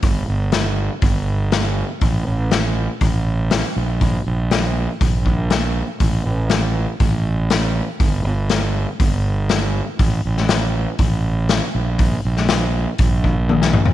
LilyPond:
<<
  \new Staff \with { instrumentName = "Fingered electric bass" } { \clef bass \time 4/4 \tempo 4 = 120 g,,8 g,,4. g,,2 | a,,8 a,,4. a,,4. bes,,8~ | bes,,8 bes,,4. bes,,2 | a,,8 a,,4. a,,2 |
g,,8 g,,4. g,,2 | a,,8 a,,4. a,,4. bes,,8~ | bes,,8 bes,,4. bes,,2 | }
  \new DrumStaff \with { instrumentName = "Drums" } \drummode { \time 4/4 <hho bd>4 <hho sn>4 <hho bd>4 <hho sn>4 | <hho bd>4 <hho sn>4 <hho bd>4 <hho sn>4 | <hho bd>4 <hho sn>4 <hho bd>8 bd8 <hho sn>4 | <hho bd>4 <hho sn>4 <hho bd>4 <hho sn>4 |
<hho bd>4 <hho sn>4 <hho bd>4 <hho sn>4 | <hho bd>8. sn16 <hho sn>4 <hho bd>4 <hho sn>4 | <hho bd>8. sn16 <hho sn>4 <hho bd>8 bd8 tommh16 sn16 toml16 tomfh16 | }
>>